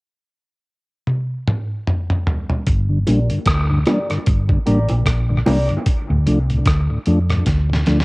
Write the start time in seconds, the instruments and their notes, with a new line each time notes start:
1.07 high tom
1.47 mid tom
1.87 mid tom
2.10 mid tom
2.27 floor tom
2.50 floor tom
2.67 fingered electric bass G1, kick, closed hi-hat
2.90 tonewheel organ G2 D3
3.07 fingered electric bass A#1, tonewheel organ G3 A#3 D4, clean electric guitar G4 A#4 D5, closed hi-hat, high bongo
3.30 tonewheel organ G2 D3, closed hi-hat
3.46 fingered electric bass D2, kick, cross-stick, closed hi-hat
3.70 tonewheel organ G2 D3
3.86 tonewheel organ G3 A#3 D4, clean electric guitar G4 A#4 D5, cross-stick, closed hi-hat, high bongo, low bongo
4.10 tonewheel organ G2 D3, muted clean electric guitar stroke, cross-stick, closed hi-hat
4.26 fingered electric bass G1, kick, closed hi-hat
4.49 tonewheel organ G2 D3, muted clean electric guitar stroke, kick
4.66 fingered electric bass A1, tonewheel organ G3 A#3 D4, clean electric guitar G4 A#4 D5, closed hi-hat
4.89 fingered electric bass A#1, closed hi-hat, high bongo
5.06 fingered electric bass A#1, kick, cross-stick, closed hi-hat
5.29 tonewheel organ G2 D3, muted clean electric guitar stroke
5.46 fingered electric bass C2, tonewheel organ G3 A#3 D4, clean electric guitar G4 A#4 D5, open hi-hat, high bongo, low bongo
5.69 tonewheel organ G2 D3, closed hi-hat
5.86 kick, closed hi-hat
6.10 fingered electric bass D2, tonewheel organ D2 A2
6.26 fingered electric bass C2, tonewheel organ F3 A3 D4, closed hi-hat
6.50 tonewheel organ D2 A2, closed hi-hat
6.66 fingered electric bass D2, kick, cross-stick, closed hi-hat
6.90 tonewheel organ D2 A2
7.06 fingered electric bass F2, tonewheel organ F3 A3 D4, closed hi-hat
7.30 tonewheel organ D2 A2, cross-stick, closed hi-hat
7.46 fingered electric bass D2, kick, snare, closed hi-hat
7.70 tonewheel organ D2 A2, snare
7.86 fingered electric bass D2, tonewheel organ F3 A3 D4, snare, closed hi-hat
8.00 snare